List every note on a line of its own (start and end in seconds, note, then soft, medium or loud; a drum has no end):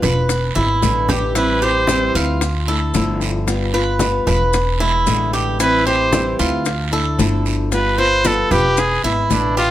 0.02 0.52 E1 loud
0.02 0.29 B3 soft
0.02 0.28 F4 soft
0.02 0.54 B4 medium
0.02 high conga soft
0.02 low conga medium
0.02 short guiro medium
0.02 maracas soft
0.29 muted nylon-string guitar stroke medium
0.29 high bongo medium
0.29 high conga soft
0.29 long guiro medium
0.29 maracas medium
0.55 0.81 G#1 medium
0.55 0.82 G#3 soft
0.55 0.82 B3 soft
0.55 1.07 E4 medium
0.55 0.81 E4 medium
0.55 high bongo soft
0.55 high conga medium
0.55 maracas soft
0.82 2.08 A1 medium
0.82 1.34 B2 medium
0.82 1.34 D3 medium
0.82 1.35 G#3 medium
0.82 1.35 B3 medium
0.82 1.35 E4 medium
0.82 high bongo soft
0.82 low bongo medium
0.82 short guiro medium
0.82 maracas medium
1.09 1.35 G4 medium
1.09 high bongo soft
1.09 low conga medium
1.09 short guiro medium
1.09 maracas soft
1.35 1.61 E3 medium
1.35 1.61 G3 medium
1.35 1.61 C4 medium
1.35 1.61 E4 medium
1.35 1.65 B4 medium
1.35 high bongo medium
1.35 high conga soft
1.35 long guiro medium
1.35 maracas medium
1.62 1.87 G3 soft
1.62 1.88 C4 soft
1.62 1.87 E4 soft
1.62 2.13 G4 medium
1.62 2.16 C5 loud
1.62 high bongo soft
1.62 high conga soft
1.62 maracas soft
1.87 2.14 E3 medium
1.87 2.14 G3 medium
1.87 2.14 C4 medium
1.87 2.14 E4 medium
1.87 high bongo medium
1.87 high conga medium
1.87 short guiro medium
1.87 maracas medium
2.14 2.91 D2 medium
2.14 2.41 G3 soft
2.14 2.41 C4 soft
2.14 2.40 E4 soft
2.14 2.67 F4 medium
2.14 high conga soft
2.14 short guiro medium
2.14 maracas soft
2.41 muted nylon-string guitar stroke medium
2.41 high bongo medium
2.41 high conga soft
2.41 long guiro medium
2.41 maracas medium
2.67 2.94 A3 soft
2.67 2.94 D4 soft
2.67 2.93 E4 medium
2.67 3.20 A4 medium
2.67 high bongo soft
2.67 high conga soft
2.67 maracas soft
2.94 4.21 G1 loud
2.94 3.46 D3 medium
2.94 3.47 F3 medium
2.94 3.46 A3 medium
2.94 3.47 D4 medium
2.94 3.47 E4 medium
2.94 high bongo soft
2.94 low bongo medium
2.94 high conga soft
2.94 short guiro medium
2.94 maracas medium
3.21 high bongo soft
3.21 high conga soft
3.21 short guiro medium
3.21 maracas soft
3.47 3.73 G3 medium
3.47 3.73 B3 medium
3.47 3.72 F4 medium
3.47 high bongo medium
3.47 high conga soft
3.47 long guiro medium
3.47 maracas medium
3.73 3.99 B3 soft
3.73 3.99 F4 medium
3.73 4.26 B4 medium
3.73 high bongo soft
3.73 high conga soft
3.73 maracas soft
3.99 4.26 G3 medium
3.99 4.26 B3 medium
3.99 4.25 F4 medium
3.99 high bongo medium
3.99 high conga medium
3.99 short guiro medium
3.99 maracas medium
4.26 5.03 E1 medium
4.26 4.53 B3 soft
4.26 4.52 F4 medium
4.26 4.79 B4 medium
4.26 high conga soft
4.26 low conga medium
4.26 short guiro medium
4.26 maracas soft
4.53 muted nylon-string guitar stroke medium
4.53 high bongo medium
4.53 high conga soft
4.53 long guiro medium
4.53 maracas medium
4.79 5.06 G#3 soft
4.79 5.06 B3 soft
4.79 5.05 E4 medium
4.79 5.32 E4 medium
4.79 high bongo soft
4.79 high conga soft
4.79 maracas soft
5.06 6.33 A1 loud
5.06 5.59 B2 medium
5.06 5.59 D3 medium
5.06 5.59 G#3 medium
5.06 5.59 B3 medium
5.06 5.60 E4 medium
5.06 high bongo soft
5.06 low bongo medium
5.06 short guiro medium
5.06 maracas medium
5.33 5.59 G4 medium
5.33 high bongo soft
5.33 short guiro medium
5.33 maracas soft
5.59 5.85 E3 medium
5.59 5.85 G3 medium
5.59 5.86 C4 medium
5.59 5.86 E4 medium
5.59 5.85 E4 medium
5.59 5.86 B4 medium
5.59 high bongo medium
5.59 high conga soft
5.59 long guiro medium
5.59 maracas medium
5.86 6.12 G3 soft
5.86 6.12 C4 soft
5.86 6.12 E4 soft
5.86 6.38 G4 medium
5.86 6.36 C5 medium
5.86 high bongo soft
5.86 high conga soft
5.86 maracas soft
6.13 6.38 E3 medium
6.13 6.39 G3 medium
6.13 6.39 C4 medium
6.13 6.38 E4 medium
6.13 high bongo medium
6.13 high conga medium
6.13 short guiro medium
6.13 maracas medium
6.39 7.15 D2 loud
6.39 6.66 G3 soft
6.39 6.65 C4 medium
6.39 6.65 E4 medium
6.39 6.91 F4 medium
6.39 high conga soft
6.39 short guiro medium
6.39 maracas soft
6.65 muted nylon-string guitar stroke medium
6.65 high bongo medium
6.65 high conga soft
6.65 long guiro medium
6.65 maracas medium
6.91 7.18 A3 soft
6.91 7.18 D4 medium
6.91 7.17 E4 soft
6.91 7.44 A4 medium
6.91 high bongo soft
6.91 high conga soft
6.91 maracas soft
7.18 8.45 G1 loud
7.18 7.70 D3 medium
7.18 7.71 F3 medium
7.18 7.71 A3 medium
7.18 7.71 D4 medium
7.18 7.71 E4 medium
7.18 high bongo soft
7.18 low bongo medium
7.18 short guiro medium
7.18 maracas medium
7.45 high bongo soft
7.45 high conga soft
7.45 short guiro medium
7.45 maracas soft
7.71 7.97 G3 medium
7.71 7.98 B3 medium
7.71 7.97 F4 medium
7.71 8.00 B4 medium
7.71 high bongo medium
7.71 high conga soft
7.71 long guiro medium
7.71 maracas medium
7.98 8.24 B3 soft
7.98 8.24 F4 medium
7.98 8.50 B4 medium
7.98 8.28 C5 loud
7.98 high bongo soft
7.98 high conga soft
7.98 maracas soft
8.24 8.50 G3 medium
8.24 8.51 B3 medium
8.24 8.49 F4 medium
8.24 8.53 A4 medium
8.24 high bongo medium
8.24 high conga medium
8.24 short guiro medium
8.24 maracas medium
8.51 9.00 E1 medium
8.51 8.77 B3 soft
8.51 8.76 F4 medium
8.51 8.81 G4 medium
8.51 9.03 B4 medium
8.51 high conga soft
8.51 low conga medium
8.51 short guiro medium
8.51 maracas soft
8.77 9.04 G#4 medium
8.77 muted nylon-string guitar stroke medium
8.77 high bongo medium
8.77 high conga soft
8.77 long guiro medium
8.77 maracas medium
9.04 9.29 G#1 medium
9.04 9.30 G#3 soft
9.04 9.21 B3 soft
9.04 9.30 B3 soft
9.04 9.29 E4 soft
9.04 9.56 E4 medium
9.04 high bongo soft
9.04 high conga soft
9.04 maracas soft
9.30 9.71 A1 medium
9.30 9.71 B2 medium
9.30 9.71 D3 medium
9.30 9.71 G#3 medium
9.30 9.71 B3 medium
9.30 9.57 D4 medium
9.30 9.71 E4 medium
9.30 high bongo soft
9.30 low bongo medium
9.30 short guiro medium
9.30 maracas medium
9.57 9.71 F4 loud
9.57 9.71 G4 medium
9.57 high bongo soft
9.57 short guiro medium
9.57 maracas soft